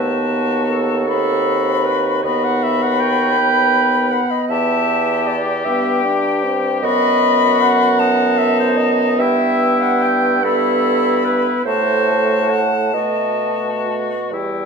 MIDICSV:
0, 0, Header, 1, 6, 480
1, 0, Start_track
1, 0, Tempo, 773196
1, 1390, Tempo, 750000
1, 1391, Time_signature, 6, 3, 24, 8
1, 2830, Tempo, 781250
1, 5710, Tempo, 828729
1, 7630, Tempo, 882353
1, 8110, Tempo, 949367
1, 8757, End_track
2, 0, Start_track
2, 0, Title_t, "Flute"
2, 0, Program_c, 0, 73
2, 0, Note_on_c, 0, 81, 60
2, 665, Note_off_c, 0, 81, 0
2, 669, Note_on_c, 0, 83, 66
2, 1376, Note_off_c, 0, 83, 0
2, 1390, Note_on_c, 0, 83, 73
2, 2805, Note_off_c, 0, 83, 0
2, 2834, Note_on_c, 0, 81, 72
2, 3372, Note_off_c, 0, 81, 0
2, 3547, Note_on_c, 0, 79, 72
2, 4240, Note_off_c, 0, 79, 0
2, 4272, Note_on_c, 0, 83, 85
2, 4983, Note_on_c, 0, 81, 72
2, 4992, Note_off_c, 0, 83, 0
2, 5709, Note_off_c, 0, 81, 0
2, 5712, Note_on_c, 0, 79, 74
2, 6422, Note_off_c, 0, 79, 0
2, 6440, Note_on_c, 0, 83, 77
2, 7129, Note_off_c, 0, 83, 0
2, 7149, Note_on_c, 0, 81, 74
2, 8401, Note_off_c, 0, 81, 0
2, 8589, Note_on_c, 0, 79, 43
2, 8757, Note_off_c, 0, 79, 0
2, 8757, End_track
3, 0, Start_track
3, 0, Title_t, "Clarinet"
3, 0, Program_c, 1, 71
3, 0, Note_on_c, 1, 71, 72
3, 437, Note_on_c, 1, 69, 68
3, 446, Note_off_c, 1, 71, 0
3, 662, Note_off_c, 1, 69, 0
3, 666, Note_on_c, 1, 69, 89
3, 1148, Note_on_c, 1, 71, 71
3, 1157, Note_off_c, 1, 69, 0
3, 1392, Note_on_c, 1, 75, 84
3, 1401, Note_off_c, 1, 71, 0
3, 1518, Note_on_c, 1, 78, 80
3, 1528, Note_off_c, 1, 75, 0
3, 1641, Note_on_c, 1, 76, 84
3, 1651, Note_off_c, 1, 78, 0
3, 1767, Note_on_c, 1, 78, 85
3, 1777, Note_off_c, 1, 76, 0
3, 1878, Note_on_c, 1, 79, 102
3, 1888, Note_off_c, 1, 78, 0
3, 2591, Note_on_c, 1, 78, 78
3, 2600, Note_off_c, 1, 79, 0
3, 2715, Note_on_c, 1, 75, 76
3, 2724, Note_off_c, 1, 78, 0
3, 2833, Note_on_c, 1, 76, 92
3, 2842, Note_off_c, 1, 75, 0
3, 3311, Note_on_c, 1, 74, 83
3, 3321, Note_off_c, 1, 76, 0
3, 3544, Note_on_c, 1, 76, 82
3, 3553, Note_off_c, 1, 74, 0
3, 3781, Note_off_c, 1, 76, 0
3, 4265, Note_on_c, 1, 75, 105
3, 4749, Note_on_c, 1, 78, 100
3, 4758, Note_off_c, 1, 75, 0
3, 5223, Note_on_c, 1, 76, 95
3, 5232, Note_off_c, 1, 78, 0
3, 5343, Note_off_c, 1, 76, 0
3, 5353, Note_on_c, 1, 72, 84
3, 5463, Note_on_c, 1, 75, 96
3, 5473, Note_off_c, 1, 72, 0
3, 5715, Note_on_c, 1, 76, 101
3, 5724, Note_off_c, 1, 75, 0
3, 6083, Note_on_c, 1, 78, 90
3, 6091, Note_off_c, 1, 76, 0
3, 6204, Note_on_c, 1, 79, 93
3, 6213, Note_off_c, 1, 78, 0
3, 6444, Note_on_c, 1, 69, 98
3, 6452, Note_off_c, 1, 79, 0
3, 6911, Note_on_c, 1, 71, 77
3, 6920, Note_off_c, 1, 69, 0
3, 7141, Note_off_c, 1, 71, 0
3, 7145, Note_on_c, 1, 72, 90
3, 7637, Note_on_c, 1, 78, 79
3, 7645, Note_off_c, 1, 72, 0
3, 7874, Note_on_c, 1, 75, 73
3, 7882, Note_off_c, 1, 78, 0
3, 8262, Note_off_c, 1, 75, 0
3, 8348, Note_on_c, 1, 66, 58
3, 8593, Note_on_c, 1, 67, 60
3, 8601, Note_off_c, 1, 66, 0
3, 8757, Note_off_c, 1, 67, 0
3, 8757, End_track
4, 0, Start_track
4, 0, Title_t, "Oboe"
4, 0, Program_c, 2, 68
4, 0, Note_on_c, 2, 66, 60
4, 658, Note_off_c, 2, 66, 0
4, 683, Note_on_c, 2, 66, 55
4, 1383, Note_off_c, 2, 66, 0
4, 1404, Note_on_c, 2, 66, 56
4, 2119, Note_on_c, 2, 71, 58
4, 2128, Note_off_c, 2, 66, 0
4, 2668, Note_off_c, 2, 71, 0
4, 2840, Note_on_c, 2, 67, 68
4, 4277, Note_on_c, 2, 66, 65
4, 4286, Note_off_c, 2, 67, 0
4, 4987, Note_off_c, 2, 66, 0
4, 4990, Note_on_c, 2, 63, 62
4, 5727, Note_on_c, 2, 64, 69
4, 5736, Note_off_c, 2, 63, 0
4, 6433, Note_off_c, 2, 64, 0
4, 6436, Note_on_c, 2, 64, 61
4, 7127, Note_off_c, 2, 64, 0
4, 7153, Note_on_c, 2, 66, 60
4, 7785, Note_off_c, 2, 66, 0
4, 7878, Note_on_c, 2, 66, 49
4, 8575, Note_off_c, 2, 66, 0
4, 8594, Note_on_c, 2, 64, 42
4, 8757, Note_off_c, 2, 64, 0
4, 8757, End_track
5, 0, Start_track
5, 0, Title_t, "French horn"
5, 0, Program_c, 3, 60
5, 0, Note_on_c, 3, 59, 59
5, 669, Note_off_c, 3, 59, 0
5, 671, Note_on_c, 3, 60, 57
5, 1377, Note_off_c, 3, 60, 0
5, 1400, Note_on_c, 3, 59, 58
5, 2101, Note_off_c, 3, 59, 0
5, 2111, Note_on_c, 3, 59, 60
5, 3357, Note_off_c, 3, 59, 0
5, 3548, Note_on_c, 3, 59, 64
5, 3767, Note_off_c, 3, 59, 0
5, 3788, Note_on_c, 3, 62, 71
5, 4025, Note_on_c, 3, 60, 66
5, 4034, Note_off_c, 3, 62, 0
5, 4269, Note_on_c, 3, 59, 69
5, 4278, Note_off_c, 3, 60, 0
5, 6434, Note_off_c, 3, 59, 0
5, 6438, Note_on_c, 3, 59, 63
5, 7128, Note_off_c, 3, 59, 0
5, 7143, Note_on_c, 3, 57, 61
5, 7849, Note_off_c, 3, 57, 0
5, 7875, Note_on_c, 3, 57, 51
5, 8499, Note_off_c, 3, 57, 0
5, 8585, Note_on_c, 3, 55, 46
5, 8757, Note_off_c, 3, 55, 0
5, 8757, End_track
6, 0, Start_track
6, 0, Title_t, "Bassoon"
6, 0, Program_c, 4, 70
6, 0, Note_on_c, 4, 39, 62
6, 1389, Note_off_c, 4, 39, 0
6, 1392, Note_on_c, 4, 39, 61
6, 2640, Note_off_c, 4, 39, 0
6, 2835, Note_on_c, 4, 40, 64
6, 3521, Note_off_c, 4, 40, 0
6, 3544, Note_on_c, 4, 43, 64
6, 4249, Note_off_c, 4, 43, 0
6, 4265, Note_on_c, 4, 42, 71
6, 5688, Note_off_c, 4, 42, 0
6, 5716, Note_on_c, 4, 43, 68
6, 7047, Note_off_c, 4, 43, 0
6, 7146, Note_on_c, 4, 45, 66
6, 7870, Note_on_c, 4, 47, 59
6, 7878, Note_off_c, 4, 45, 0
6, 8586, Note_on_c, 4, 40, 46
6, 8593, Note_off_c, 4, 47, 0
6, 8757, Note_off_c, 4, 40, 0
6, 8757, End_track
0, 0, End_of_file